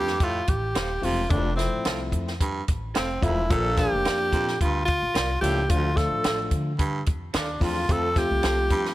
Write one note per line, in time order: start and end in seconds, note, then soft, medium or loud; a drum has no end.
0.00 0.40 F2 medium
0.00 0.15 G2 medium
0.00 0.12 F3 medium
0.00 0.16 A3 medium
0.00 0.13 C4 medium
0.00 0.13 F4 medium
0.00 0.25 G4 loud
0.07 snare soft
0.20 0.42 A2 medium
0.20 0.51 F4 medium
0.20 kick medium
0.20 closed hi-hat medium
0.47 0.72 A1 medium
0.47 1.06 G4 loud
0.47 kick medium
0.47 closed hi-hat medium
0.75 1.00 D#1 loud
0.75 0.87 A4 medium
0.75 0.88 C5 medium
0.75 0.88 F5 loud
0.75 snare loud
0.75 closed hi-hat loud
1.01 1.27 E1 medium
1.01 1.25 C3 medium
1.01 1.21 F3 medium
1.01 1.21 A3 medium
1.01 1.22 C4 medium
1.01 1.22 F4 medium
1.01 1.31 F4 medium
1.01 open hi-hat medium
1.29 1.66 F1 loud
1.29 1.53 F2 medium
1.29 1.49 F3 medium
1.29 1.49 A3 medium
1.29 1.49 C4 medium
1.29 1.55 D4 medium
1.29 1.49 D4 medium
1.29 kick loud
1.29 closed hi-hat medium
1.56 2.32 F3 medium
1.56 2.33 A3 medium
1.56 2.08 C4 medium
1.56 2.33 C4 medium
1.56 2.33 E4 medium
1.56 snare soft
1.56 closed hi-hat medium
1.72 1.84 A1 medium
1.85 2.09 C2 loud
1.85 1.98 A4 medium
1.85 1.98 C5 medium
1.85 1.98 F5 medium
1.85 snare loud
1.85 closed hi-hat medium
2.12 2.60 F2 medium
2.12 kick medium
2.12 closed hi-hat medium
2.28 snare soft
2.41 2.63 G2 medium
2.41 kick medium
2.41 closed hi-hat loud
2.68 2.92 A1 medium
2.68 kick medium
2.68 closed hi-hat medium
2.94 3.20 F1 medium
2.94 3.25 C4 medium
2.94 3.07 A4 medium
2.94 3.07 C5 medium
2.94 3.08 F5 medium
2.94 snare loud
2.94 closed hi-hat medium
3.21 3.52 E1 loud
3.21 3.45 F2 medium
3.21 3.41 F3 medium
3.21 3.41 A3 medium
3.21 3.42 C4 medium
3.21 3.53 E4 medium
3.21 3.42 F4 medium
3.21 kick medium
3.21 closed hi-hat medium
3.50 3.86 A#1 loud
3.50 3.89 A#2 medium
3.50 3.69 F3 medium
3.50 3.69 A#3 medium
3.50 3.69 D4 medium
3.50 3.69 F4 medium
3.50 3.79 A4 loud
3.50 kick loud
3.50 closed hi-hat loud
3.77 4.53 F3 medium
3.77 4.53 A#3 medium
3.77 4.53 D4 medium
3.77 4.54 F4 medium
3.77 4.60 G4 loud
3.77 kick medium
3.77 snare soft
3.77 closed hi-hat medium
3.93 4.04 F1 medium
4.05 4.30 F2 medium
4.05 4.17 A#4 medium
4.05 4.18 D5 medium
4.05 4.18 F5 medium
4.05 snare loud
4.05 closed hi-hat medium
4.33 4.55 F2 medium
4.33 4.56 A#2 medium
4.33 kick medium
4.33 closed hi-hat medium
4.48 snare soft
4.61 4.96 D2 medium
4.61 4.82 G2 medium
4.61 4.85 F4 medium
4.61 kick medium
4.61 closed hi-hat loud
4.85 5.38 F4 loud
4.85 kick medium
4.85 closed hi-hat medium
5.02 5.14 A#1 medium
5.14 5.39 C2 medium
5.14 5.27 A#4 medium
5.14 5.27 D5 medium
5.14 5.27 F5 medium
5.14 snare loud
5.14 closed hi-hat medium
5.41 5.66 C#2 loud
5.41 5.64 A2 medium
5.41 5.61 F3 medium
5.41 5.61 A#3 medium
5.41 5.62 D4 medium
5.41 5.62 F4 medium
5.41 5.72 G4 loud
5.41 closed hi-hat medium
5.69 5.92 D2 medium
5.69 6.05 D2 loud
5.69 5.88 F3 medium
5.69 5.88 A3 medium
5.69 5.89 D4 medium
5.69 5.89 F4 medium
5.69 5.98 F4 loud
5.69 kick loud
5.69 closed hi-hat medium
5.95 6.71 F3 medium
5.95 6.71 A3 medium
5.95 6.72 D4 medium
5.95 6.72 F4 medium
5.95 6.52 A4 loud
5.95 kick loud
5.95 snare soft
5.95 closed hi-hat medium
6.11 6.23 A1 medium
6.24 6.48 A1 medium
6.24 6.37 A4 medium
6.24 6.37 D5 medium
6.24 6.37 F5 medium
6.24 snare loud
6.24 closed hi-hat medium
6.51 6.99 D3 loud
6.51 kick medium
6.51 closed hi-hat medium
6.79 7.01 G2 medium
6.79 kick loud
6.79 closed hi-hat medium
7.06 7.31 F2 medium
7.06 kick loud
7.06 closed hi-hat medium
7.34 7.58 D#2 medium
7.34 7.65 D4 medium
7.34 7.46 A4 medium
7.34 7.46 D5 medium
7.34 7.47 F5 medium
7.34 snare loud
7.34 closed hi-hat medium
7.60 7.85 E2 loud
7.60 7.83 F2 medium
7.60 7.80 F3 medium
7.60 7.80 A3 medium
7.60 7.80 D4 medium
7.60 7.80 F4 medium
7.60 7.93 F4 loud
7.60 kick medium
7.60 open hi-hat medium
7.88 8.27 F2 medium
7.88 8.25 F2 loud
7.88 8.07 F3 medium
7.88 8.08 A3 medium
7.88 8.08 C4 medium
7.88 8.08 F4 medium
7.88 8.20 A4 loud
7.88 kick loud
7.88 closed hi-hat medium
8.16 8.91 F3 medium
8.16 8.91 A3 medium
8.16 8.91 C4 medium
8.16 8.91 F4 medium
8.16 8.94 G4 loud
8.16 kick loud
8.16 snare soft
8.16 closed hi-hat medium
8.31 8.42 C2 loud
8.43 8.68 C2 medium
8.43 8.56 A4 medium
8.43 8.56 C5 medium
8.43 8.56 F5 medium
8.43 snare medium
8.43 closed hi-hat medium
8.70 8.93 G2 loud
8.70 8.94 F3 medium
8.70 kick medium
8.70 closed hi-hat medium
8.85 snare soft